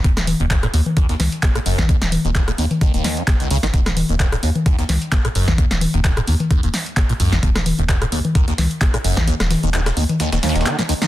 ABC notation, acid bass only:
X:1
M:4/4
L:1/16
Q:"Swing 16ths" 1/4=130
K:Ebm
V:1 name="Acid bass" clef=bass
E,, z2 E,, E,, B,, E,, z E,, E,, z3 B,, G,, E,, | E,, z2 E,, E,, B,, E,, z E,, E,,2 G,, z D,, D, E, | E,, z2 E,, E,, B,, E,, z E,, E,, z3 B,, G,, E,, | E,, z2 E,, E,, B,, E,, z E,, E,, z3 B,, G,, E,, |
E,, z2 E,, E,, B,, E,, z E,, E,, z3 B,, G,, E,, | E,, z2 E,, E,, B,, E,, z E,, E,, E,,2 E, B,, E,, E, |]